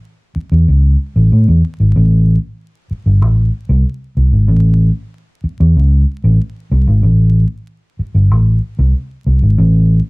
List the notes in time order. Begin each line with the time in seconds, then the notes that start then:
0.36 muted fingered electric bass stroke
0.52 E2
0.68 C#2
1.16 A1
1.32 A2
1.48 E2
1.80 G#1
1.96 A1
2.91 muted fingered electric bass stroke
3.06 G1
3.22 A1
3.69 C2
4.17 C2
4.32 G#1
4.48 A1
5.44 muted fingered electric bass stroke
5.60 E2
5.76 C#2
6.24 A1
6.71 C2
6.87 G#1
7.03 A1
7.99 muted fingered electric bass stroke
8.14 G1
8.31 A1
8.79 C2
9.27 C2
9.42 G#1
9.58 A1